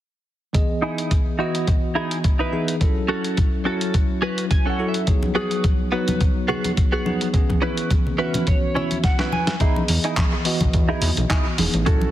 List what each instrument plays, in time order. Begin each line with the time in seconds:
0.53 tine electric piano E3 B3 G#4 D#5, kick, closed hi-hat
0.82 clean electric guitar D#4 E4 G#4
0.98 closed hi-hat
1.11 kick, closed hi-hat
1.38 tine electric piano E3 B3 F#4 D#5, clean electric guitar D#4 E4 F#4
1.55 closed hi-hat
1.67 kick, closed hi-hat
1.95 clean electric guitar D#4 E4 G#4
2.11 closed hi-hat
2.24 kick, closed hi-hat
2.39 clean electric guitar D#4 E4 B4
2.52 tine electric piano E3 B3 D#4 G#4
2.68 closed hi-hat
2.80 tine electric piano F#3 C#4 E4 A4, kick, closed hi-hat
3.08 clean electric guitar C#4 F#4 A4
3.24 closed hi-hat
3.37 kick, closed hi-hat
3.64 tine electric piano F#3 C#4 E4 F#4, clean electric guitar C#4 F#4 A4
3.81 closed hi-hat
3.94 kick, closed hi-hat
4.22 clean electric guitar C#4 F#4 B4
4.38 closed hi-hat
4.51 clean electric guitar G#5, kick, closed hi-hat
4.66 clean electric guitar C#4 F#4 A4
4.70 clean electric guitar F#5
4.78 tine electric piano F#3 C#4 E4 A4
4.88 clean electric guitar E5
4.94 closed hi-hat
5.07 tine electric piano F#3 B3 D#4 G#4, kick, closed hi-hat
5.23 high conga
5.35 clean electric guitar B3 F#4 G#4
5.51 closed hi-hat
5.64 kick, closed hi-hat, high conga
5.91 tine electric piano F#3 B3 D#4 F#4, clean electric guitar B3 F#4 B4
6.08 closed hi-hat, high conga, low conga
6.21 kick, closed hi-hat
6.48 clean electric guitar B3 F#4 G#4, low conga
6.64 closed hi-hat, high conga
6.77 kick, closed hi-hat
6.92 clean electric guitar B3 F#4 G#4
7.06 tine electric piano F#3 B3 D#4 G#4, high conga
7.21 closed hi-hat
7.33 tine electric piano E3 B3 C#4 G#4, kick, closed hi-hat
7.50 kick, high conga
7.62 clean electric guitar C#4 E4 B4
7.77 closed hi-hat
7.91 kick, closed hi-hat, high conga
8.07 low conga
8.18 tine electric piano E3 B3 C#4 F#4, clean electric guitar C#4 E4 B4
8.34 closed hi-hat, high conga, low conga
8.47 clean electric guitar C#5, kick, closed hi-hat
8.75 clean electric guitar C#4 E4 C#5 E5, low conga
8.91 closed hi-hat, high conga
9.04 clean electric guitar F#5, kick, snare, closed hi-hat
9.19 clean electric guitar C#4 E4 B4, snare
9.32 clean electric guitar G#5, high conga
9.47 snare, closed hi-hat
9.59 tine electric piano E3 B3 G#4 D#5, clean electric guitar D#4 E4 G#4, kick, closed hi-hat
9.76 high conga
9.88 analog synth bass E2, open hi-hat
10.04 clean electric guitar D#4 E4 G#4, closed hi-hat
10.17 kick, clap, closed hi-hat, high conga
10.32 muted clean electric guitar stroke
10.45 tine electric piano E3 B3 F#4 D#5, open hi-hat
10.60 analog synth bass B1, kick, closed hi-hat, high conga, low conga
10.73 analog synth bass E2, kick, closed hi-hat
10.89 clean electric guitar D#4 E4 G#4
11.01 analog synth bass E2, open hi-hat, low conga
11.17 analog synth bass B1, closed hi-hat, high conga
11.30 clean electric guitar D#4 E4 G#4, kick, clap, closed hi-hat
11.58 analog synth bass E1, tine electric piano E3 B3 D#4 G#4, muted clean electric guitar stroke, open hi-hat, high conga
11.74 analog synth bass A1, closed hi-hat
11.86 tine electric piano F#3 C#4 E4 A4, clean electric guitar C#4 F#4 A4, kick, closed hi-hat
12.01 high conga